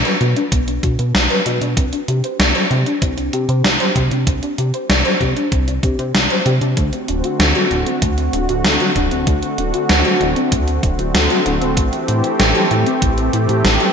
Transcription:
0.05 synth arpeggio sound B4, closed hi-hat
0.21 analog synth bass B2, synth arpeggio sound F#4, closed hi-hat
0.36 synth arpeggio sound D4, closed hi-hat
0.52 analog synth bass B1, synth arpeggio sound B3, kick, closed hi-hat
0.68 synth arpeggio sound D4, closed hi-hat
0.83 analog synth bass B2, synth arpeggio sound F#4, kick, closed hi-hat
0.99 analog synth bass B2, synth arpeggio sound B4, closed hi-hat
1.14 analog synth bass B1, synth arpeggio sound D5, snare, closed hi-hat
1.30 synth arpeggio sound B4, closed hi-hat
1.46 analog synth bass B2, synth arpeggio sound F#4, closed hi-hat
1.61 analog synth bass B2, synth arpeggio sound D4, closed hi-hat
1.77 analog synth bass C2, synth arpeggio sound C4, kick, closed hi-hat
1.93 synth arpeggio sound D4, closed hi-hat
2.08 analog synth bass C3, synth arpeggio sound G4, closed hi-hat
2.24 synth arpeggio sound C5, closed hi-hat
2.39 analog synth bass C2, synth arpeggio sound D5, snare, closed hi-hat
2.55 synth arpeggio sound C5, closed hi-hat
2.71 analog synth bass C3, synth arpeggio sound G4, closed hi-hat
2.86 synth arpeggio sound D4, closed hi-hat
3.02 analog synth bass C2, synth arpeggio sound C4, kick, closed hi-hat
3.17 synth arpeggio sound D4, closed hi-hat
3.33 analog synth bass C3, synth arpeggio sound G4, closed hi-hat
3.49 analog synth bass C3, synth arpeggio sound C5, closed hi-hat
3.64 analog synth bass C2, synth arpeggio sound D5, snare, closed hi-hat
3.80 synth arpeggio sound C5, closed hi-hat
3.96 analog synth bass C3, synth arpeggio sound G4, kick, closed hi-hat
4.11 analog synth bass C3, synth arpeggio sound D4, closed hi-hat
4.27 analog synth bass C2, synth arpeggio sound C4, kick, closed hi-hat
4.43 synth arpeggio sound D4, closed hi-hat
4.58 analog synth bass C3, synth arpeggio sound G4, closed hi-hat
4.74 synth arpeggio sound C5, closed hi-hat
4.89 analog synth bass C2, synth arpeggio sound D5, snare, closed hi-hat
5.05 synth arpeggio sound C5, closed hi-hat
5.21 analog synth bass C3, synth arpeggio sound G4, kick, closed hi-hat
5.36 synth arpeggio sound D4, closed hi-hat
5.52 analog synth bass C2, synth arpeggio sound C4, kick, closed hi-hat
5.68 synth arpeggio sound D4, closed hi-hat
5.83 analog synth bass C3, synth arpeggio sound G4, kick, closed hi-hat
5.99 analog synth bass C3, synth arpeggio sound C5, closed hi-hat
6.15 analog synth bass C2, synth arpeggio sound D5, snare, closed hi-hat
6.30 synth arpeggio sound C5, closed hi-hat
6.46 analog synth bass C3, synth arpeggio sound G4, closed hi-hat
6.61 analog synth bass C3, synth arpeggio sound D4, closed hi-hat
6.77 analog synth bass D2, analog synth pad D3 A3 C4 F#4, synth arpeggio sound A3, kick, closed hi-hat
6.93 synth arpeggio sound C4, closed hi-hat
7.08 analog synth bass D1, synth arpeggio sound D4, closed hi-hat
7.24 synth arpeggio sound F#4, closed hi-hat
7.39 analog synth bass D2, synth arpeggio sound A4, snare, closed hi-hat
7.55 synth arpeggio sound F#4, closed hi-hat
7.71 analog synth bass D1, synth arpeggio sound D4, closed hi-hat
7.86 synth arpeggio sound C4, closed hi-hat
8.02 analog synth bass D2, synth arpeggio sound A3, kick, closed hi-hat
8.18 synth arpeggio sound C4, closed hi-hat
8.33 analog synth bass D1, synth arpeggio sound D4, closed hi-hat
8.49 analog synth bass D1, synth arpeggio sound F#4, closed hi-hat
8.65 analog synth bass D2, synth arpeggio sound A4, snare, closed hi-hat
8.80 synth arpeggio sound F#4, closed hi-hat
8.96 analog synth bass D1, synth arpeggio sound D4, kick, closed hi-hat
9.11 analog synth bass D1, synth arpeggio sound C4, closed hi-hat
9.27 analog synth bass D2, synth arpeggio sound A3, kick, closed hi-hat
9.43 synth arpeggio sound C4, closed hi-hat
9.58 analog synth bass D1, synth arpeggio sound D4, closed hi-hat
9.74 synth arpeggio sound F#4, closed hi-hat
9.89 analog synth bass D2, synth arpeggio sound A4, snare, closed hi-hat
10.05 synth arpeggio sound F#4, closed hi-hat
10.21 analog synth bass D1, synth arpeggio sound D4, closed hi-hat
10.36 synth arpeggio sound C4, closed hi-hat
10.52 analog synth bass D2, synth arpeggio sound A3, kick, closed hi-hat
10.68 synth arpeggio sound C4, closed hi-hat
10.83 analog synth bass D1, synth arpeggio sound D4, kick, closed hi-hat
10.99 analog synth bass D1, synth arpeggio sound F#4, closed hi-hat
11.14 analog synth bass D2, synth arpeggio sound A4, snare, closed hi-hat
11.30 synth arpeggio sound F#4, closed hi-hat
11.46 analog synth bass D1, synth arpeggio sound D4, closed hi-hat
11.61 analog synth bass D1, synth arpeggio sound C4, closed hi-hat
11.77 analog synth bass A1, analog synth pad E3 G4, synth arpeggio sound A3, kick, closed hi-hat
11.92 synth arpeggio sound C4, closed hi-hat
12.08 analog synth bass A2, synth arpeggio sound E4, closed hi-hat
12.24 synth arpeggio sound G4, closed hi-hat
12.39 analog synth bass A1, synth arpeggio sound A4, snare, closed hi-hat
12.55 synth arpeggio sound G4, closed hi-hat
12.71 analog synth bass A2, synth arpeggio sound E4, closed hi-hat
12.86 synth arpeggio sound C4, closed hi-hat
13.02 analog synth bass A1, synth arpeggio sound A3, kick, closed hi-hat
13.18 synth arpeggio sound C4, closed hi-hat
13.33 analog synth bass A2, synth arpeggio sound E4, closed hi-hat
13.49 analog synth bass A2, synth arpeggio sound G4, closed hi-hat
13.64 analog synth bass A1, synth arpeggio sound A4, snare, closed hi-hat
13.80 synth arpeggio sound G4, closed hi-hat

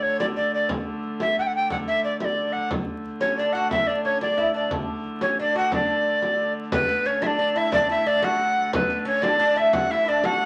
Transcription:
Already playing: hurdy-gurdy D3 A3
0.03 recorder C#5, frame drum
0.20 recorder D5, frame drum
0.36 recorder D5, frame drum
0.54 recorder D5
0.69 frame drum
1.03 frame drum
1.20 recorder E5, frame drum
1.37 recorder F#5 G5, frame drum
1.47 recorder F#5
1.55 recorder G5
1.70 recorder F#5, frame drum
1.88 recorder E5
2.04 recorder D5
2.20 recorder E5, frame drum
2.25 recorder D5
2.38 frame drum
2.53 recorder F#5, frame drum
2.70 hurdy-gurdy D3 A3, frame drum
3.05 frame drum
3.20 oud C#4, recorder C#5, frame drum
3.37 oud D4, recorder D5, frame drum
3.53 oud F#4, recorder F#5
3.71 oud E4, recorder E5, frame drum
3.87 oud D4, recorder D5
4.04 oud C#4, recorder C#5, frame drum
4.21 oud D4, recorder D5, frame drum
4.38 oud E4
4.54 oud D4, recorder D5
4.71 frame drum
5.04 frame drum
5.21 oud C#4, recorder C#5, frame drum
5.38 oud D4, recorder D5, frame drum
5.55 oud F#4, recorder F#5
5.72 oud D4, recorder D5, frame drum
5.89 frame drum
6.05 frame drum
6.22 frame drum
6.72 hurdy-gurdy D3 A3, oud B3, recorder B4, frame drum
6.89 oud B3
7.05 oud C#4, recorder C#5
7.22 oud D4, recorder E5, frame drum
7.26 recorder D5
7.39 oud D4
7.56 oud E4, recorder E5, frame drum
7.72 oud D4, recorder D5, frame drum
7.89 oud E4, recorder E5
8.06 oud D4, recorder D5
8.23 oud F#4, recorder F#5, frame drum
8.57 frame drum
8.73 oud B3, recorder B4, frame drum
8.90 oud B3
9.05 oud C#4, recorder C#5
9.22 oud D4, recorder D5, frame drum
9.40 oud D4
9.56 oud E4, recorder E5, frame drum
9.73 oud F#4, recorder F#5, frame drum
9.90 oud E4, recorder E5, frame drum
10.05 oud D4 E4, recorder D5
10.24 oud F#4, recorder F#5, frame drum

